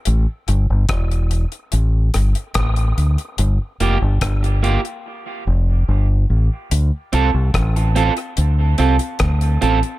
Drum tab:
HH |x-x-xxxxx-xxxxxx|x-x-xxxx--------|x-x-xxxxx-xxxxxx|
SD |----r-----r-r---|----r-----------|----r-------r---|
BD |----o-------o---|----o-----------|----o-------o---|